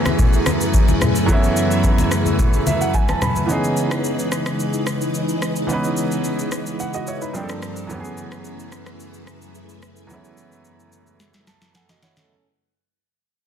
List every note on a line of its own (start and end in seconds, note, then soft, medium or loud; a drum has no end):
0.00 1.24 F#2 medium
0.00 3.46 F#2 medium
0.00 7.31 C#3 medium
0.00 1.24 E3 medium
0.00 1.25 A3 medium
0.00 3.46 A3 medium
0.00 1.26 B3 medium
0.00 1.26 C#4 medium
0.00 3.46 E4 medium
0.00 1.27 G#4 medium
0.00 3.46 G#4 medium
0.00 7.31 B4 medium
0.06 cross-stick medium
0.06 high conga medium
0.06 shaker soft
0.19 kick loud
0.19 low conga medium
0.19 shaker medium
0.33 shaker medium
0.46 cross-stick loud
0.46 high conga medium
0.46 shaker medium
0.61 shaker medium
0.74 kick medium
0.74 shaker medium
0.88 high conga medium
0.88 shaker medium
1.02 cross-stick medium
1.02 low conga medium
1.02 shaker medium
1.16 shaker medium
1.26 3.44 F#2 medium
1.26 3.44 E3 medium
1.26 3.45 A3 medium
1.26 3.46 B3 medium
1.26 kick loud
1.26 shaker medium
1.31 3.46 C#4 medium
1.31 3.47 E4 medium
1.44 shaker soft
1.57 shaker medium
1.71 shaker soft
1.84 kick medium
1.84 shaker medium
1.98 high conga medium
1.98 shaker medium
2.11 cross-stick medium
2.11 shaker loud
2.26 high conga medium
2.26 shaker soft
2.39 kick loud
2.39 low conga medium
2.39 shaker medium
2.53 shaker medium
2.67 2.80 E5 medium
2.67 high conga medium
2.67 shaker medium
2.81 2.94 F#5 medium
2.81 shaker medium
2.94 3.08 G#5 medium
2.94 kick medium
2.94 shaker medium
3.08 3.21 A5 medium
3.08 cross-stick medium
3.08 high conga medium
3.08 shaker medium
3.22 3.48 B5 medium
3.22 cross-stick medium
3.22 low conga medium
3.22 shaker medium
3.36 high conga medium
3.36 shaker medium
3.46 5.64 E3 medium
3.46 7.31 E3 medium
3.46 7.31 G#3 medium
3.46 5.65 B3 medium
3.46 5.66 C#4 medium
3.46 7.31 D#4 medium
3.46 shaker medium
3.51 5.66 D#4 medium
3.51 5.67 G#4 medium
3.64 shaker soft
3.77 shaker medium
3.91 cross-stick loud
3.91 shaker soft
4.04 shaker medium
4.19 shaker soft
4.32 cross-stick medium
4.32 shaker loud
4.46 cross-stick loud
4.46 shaker soft
4.60 shaker medium
4.73 shaker medium
4.87 cross-stick loud
4.87 shaker medium
5.01 shaker medium
5.14 shaker medium
5.29 shaker medium
5.42 cross-stick medium
5.42 shaker medium
5.56 shaker medium
5.67 6.76 E3 medium
5.67 6.77 B3 medium
5.67 6.78 C#4 medium
5.67 shaker medium
5.72 6.78 D#4 medium
5.72 6.79 B4 medium
5.84 shaker soft
5.97 shaker medium
6.12 shaker soft
6.24 shaker medium
6.39 shaker medium
6.52 cross-stick medium
6.52 shaker loud
6.66 shaker soft
6.80 6.93 F#5 medium
6.80 shaker medium
6.94 7.07 F#4 medium
6.94 7.07 D#5 medium
6.94 shaker medium
7.07 7.21 E4 medium
7.07 7.21 C#5 medium
7.07 shaker medium
7.22 7.48 D#4 medium
7.22 7.48 B4 medium
7.22 shaker medium
7.33 7.89 G2 medium
7.33 7.89 D3 medium
7.33 7.89 F3 medium
7.33 7.90 A#3 medium
7.33 7.89 A#3 medium
7.33 7.90 C4 medium
7.33 7.90 D4 medium
7.33 7.89 F4 medium
7.33 7.42 G4 medium
7.33 7.89 A4 medium
7.33 7.89 C5 medium
7.33 shaker medium
7.43 7.94 A4 medium
7.49 cross-stick medium
7.49 shaker medium
7.62 cross-stick medium
7.62 shaker medium
7.76 shaker medium
7.87 10.05 F#2 medium
7.87 12.26 F#2 medium
7.87 12.26 C#3 medium
7.87 10.05 E3 medium
7.87 10.06 A3 medium
7.87 12.26 A3 medium
7.87 10.06 B3 medium
7.87 12.26 E4 medium
7.87 12.26 G#4 medium
7.87 12.26 B4 medium
7.87 shaker medium
7.92 10.07 C#4 medium
7.92 7.98 G4 medium
8.00 10.11 G#4 medium
8.05 shaker medium
8.18 shaker medium
8.32 cross-stick medium
8.32 shaker soft
8.45 shaker medium
8.60 shaker soft
8.72 cross-stick medium
8.72 shaker loud
8.86 cross-stick medium
8.86 shaker soft
9.00 shaker medium
9.14 shaker medium
9.27 cross-stick loud
9.27 shaker medium
9.42 shaker medium
9.55 shaker medium
9.69 shaker medium
9.83 cross-stick medium
9.83 shaker medium
9.96 shaker medium
10.07 12.25 F#2 medium
10.07 12.25 E3 medium
10.07 10.16 G#3 medium
10.07 12.27 B3 medium
10.07 shaker medium
10.12 12.29 A3 medium
10.12 11.46 C#4 medium
10.12 11.47 E4 medium
10.25 shaker soft
10.38 shaker medium
10.52 shaker soft
10.65 shaker medium
10.80 shaker soft
10.92 shaker loud
11.07 shaker soft
11.20 snare medium
11.20 shaker medium
11.34 snare medium
11.34 shaker medium
11.47 11.73 A5 medium
11.47 snare medium
11.47 shaker medium
11.62 snare medium
11.62 shaker medium
11.75 11.89 A4 medium
11.75 11.89 F#5 medium
11.75 12.01 G#5 medium
11.75 snare medium
11.75 shaker medium
11.89 12.02 F#4 medium
11.89 12.02 D#5 medium
11.89 snare medium
11.89 shaker medium
12.03 12.17 E4 medium
12.03 12.16 C#5 medium
12.03 12.28 F#5 medium
12.03 snare medium
12.03 shaker medium
12.17 12.44 C#4 medium
12.17 12.43 A4 medium
12.17 snare medium
12.17 shaker medium